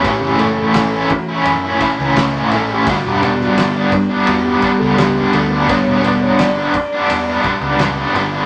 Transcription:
<<
  \new Staff \with { instrumentName = "Tonewheel organ" } { \time 4/4 \key g \lydian \tempo 4 = 85 g'8 a'4 fis'8 r4. a'16 g'16 | fis'16 g'8 fis'16 e'16 d'8 e'16 fis'16 g'8 a'16 g'8 a'16 b'16 | cis''8 b'16 cis''16 d''4. r4. | }
  \new Staff \with { instrumentName = "Tonewheel organ" } { \time 4/4 \key g \lydian r4. <e a cis'>8 r2 | r8 <g b d'>2.~ <g b d'>8~ | <g b d'>8 <g b d'>8 r2. | }
  \new Staff \with { instrumentName = "Overdriven electric guitar" } { \time 4/4 \key g \lydian <a, e a cis' e'>8 <e a cis' e'>8. <a cis' e'>8 <a cis' e'>8 <a cis' e'>16 <e a cis' e'>8 <a, e a cis' e'>16 <a cis' e'>16 <e a cis' e'>16 <a cis' e'>16 | <g, d g b d'>8 <d g b d'>8. <g b d'>8 <g b d'>8 <g b d'>16 <d g b d'>8 <g, d g b d'>16 <g b d'>16 <d g b d'>16 <g b d'>16 | <g, d g b d'>8 <d g b d'>8. <g b d'>8 <g b d'>8 <g b d'>16 <d g b d'>8 <g, d g b d'>16 <g b d'>16 <d g b d'>16 <g b d'>16 | }
  \new Staff \with { instrumentName = "Picked electric bass" } { \clef bass \time 4/4 \key g \lydian a,,16 fis,,8. a,,8 r8 fis,8 r16 cis,8. a,,8 | g,,16 e,,8. g,,8 r8 e,8 r16 cis,8. d,8 | g,,16 e,,8. g,,8 r8 e,8 r16 cis,8. g,,8 | }
  \new DrumStaff \with { instrumentName = "Drums" } \drummode { \time 4/4 <bd cymr>8 cymr8 <cymr sn>8 <bd cymr>8 cymr8 <bd cymr>8 <cymr sn>8 cymr8 | <bd cymr>8 cymr16 sn16 <cymr sn>8 <bd cymr>8 cymr8 <bd cymr>8 <cymr sn>8 cymr8 | <bd cymr>8 cymr8 <cymr sn>8 <bd cymr>8 cymr8 <bd cymr>8 <cymr sn>8 cymr8 | }
>>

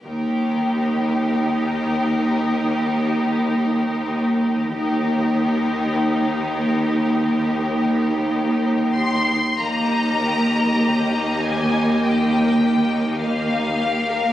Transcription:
<<
  \new Staff \with { instrumentName = "Violin section" } { \time 4/4 \key ees \major \tempo 4 = 51 bes'1 | bes'2.~ bes'8 c'''8 | bes''4. aes''8 g''4 f''4 | }
  \new Staff \with { instrumentName = "Violin section" } { \time 4/4 \key ees \major << { g'1 | g'1 | ees''1 | } \\ { r1 | r1 | bes16 ees'16 g'16 bes'16 g'16 ees'16 bes16 ees'16 g'16 bes'16 g'16 ees'16 bes16 ees'16 g'16 bes'16 | } >> }
  \new Staff \with { instrumentName = "Viola section" } { \time 4/4 \key ees \major ees'1 | ees'1 | <bes g'>1 | }
  \new Staff \with { instrumentName = "Cello section" } { \clef bass \time 4/4 \key ees \major ees,1 | ees,1 | ees,1 | }
  \new Staff \with { instrumentName = "Double bass section" } { \clef bass \time 4/4 \key ees \major r1 | r1 | ees,1 | }
>>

